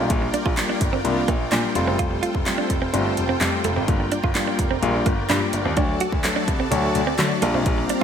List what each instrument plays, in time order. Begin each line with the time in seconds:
Already playing: tine electric piano G3 A#3 D4 F4, supersaw synth F4 A#4 D5 G5
0.10 grand piano A#1, kick, closed hi-hat
0.22 muted clean electric guitar stroke
0.34 clean electric guitar D4, closed hi-hat
0.46 grand piano A#1, clean electric guitar F4, kick
0.57 tine electric piano G3 A#3 D4 F4, snare, clap, closed hi-hat
0.69 clean electric guitar D4
0.81 grand piano G1, muted clean electric guitar stroke, kick, closed hi-hat
0.93 clean electric guitar C4
1.04 grand piano C2, tine electric piano G3 A#3 D4 F4, closed hi-hat
1.28 grand piano A#1, clean electric guitar A#3, kick, closed hi-hat
1.52 grand piano A#2, tine electric piano G3 A#3 D4 F4, clean electric guitar D4, snare, clap, closed hi-hat
1.75 grand piano F1, tine electric piano G3 A3 C4 F4, supersaw synth A4 C5, muted clean electric guitar stroke, closed hi-hat
1.87 grand piano F#1, clean electric guitar C4
1.99 grand piano F1, clean electric guitar F4, kick, closed hi-hat
2.11 muted clean electric guitar stroke
2.23 clean electric guitar F4, closed hi-hat
2.35 grand piano F1, kick
2.46 tine electric piano G3 A3 C4 F4, snare, clap, closed hi-hat
2.58 clean electric guitar D4
2.70 grand piano F1, muted clean electric guitar stroke, kick, closed hi-hat
2.82 clean electric guitar C4
2.93 grand piano G1, tine electric piano G3 A3 C4 F4, clean electric guitar D4, closed hi-hat
3.06 muted clean electric guitar stroke
3.17 grand piano F1, closed hi-hat
3.29 clean electric guitar C4
3.40 grand piano F2, tine electric piano G3 A3 C4 G4, muted clean electric guitar stroke, snare, clap, closed hi-hat
3.64 grand piano F1, clean electric guitar A3, closed hi-hat
3.76 grand piano G#1, clean electric guitar C4
3.88 grand piano G1, tine electric piano G3 A#3 D4 F4, supersaw synth A#4 D5, kick, closed hi-hat
4.00 muted clean electric guitar stroke
4.12 clean electric guitar D4, closed hi-hat
4.23 grand piano G1, clean electric guitar F4, kick
4.35 tine electric piano G3 A#3 D4 F4, snare, clap, closed hi-hat
4.47 clean electric guitar D4
4.59 grand piano F1, muted clean electric guitar stroke, kick, closed hi-hat
4.71 clean electric guitar C4
4.82 grand piano A#1, tine electric piano G3 A#3 D4 F4, closed hi-hat
5.06 grand piano G1, clean electric guitar A#3, kick, closed hi-hat
5.30 grand piano G2, tine electric piano G3 A#3 D4 F4, clean electric guitar D4, snare, clap, closed hi-hat
5.53 grand piano G1, muted clean electric guitar stroke, closed hi-hat
5.65 grand piano D#2, clean electric guitar C4
5.77 grand piano D2, tine electric piano F#3 A3 D4 F#4, clean electric guitar D4, supersaw synth F#4, kick, closed hi-hat
5.89 muted clean electric guitar stroke
6.00 clean electric guitar F#4, closed hi-hat
6.12 grand piano D2, kick
6.24 tine electric piano F#3 A3 D4 A4, snare, clap, closed hi-hat
6.36 clean electric guitar D4
6.48 grand piano C2, muted clean electric guitar stroke, kick, closed hi-hat
6.60 clean electric guitar C4
6.71 grand piano D2, tine electric piano F#3 A3 D4 F#4, clean electric guitar D4, closed hi-hat
6.84 muted clean electric guitar stroke
6.95 grand piano D2, closed hi-hat
7.07 clean electric guitar C4
7.18 grand piano D3, tine electric piano F#3 A3 D4 F#4, muted clean electric guitar stroke, snare, clap, closed hi-hat
7.42 grand piano A#1, tine electric piano G3 A#3 D4 F4, clean electric guitar A#3, supersaw synth G4 F5 A#5, closed hi-hat
7.54 grand piano B1, clean electric guitar C4
7.66 grand piano A#1, kick, closed hi-hat, swell
7.78 muted clean electric guitar stroke
7.89 clean electric guitar D4, closed hi-hat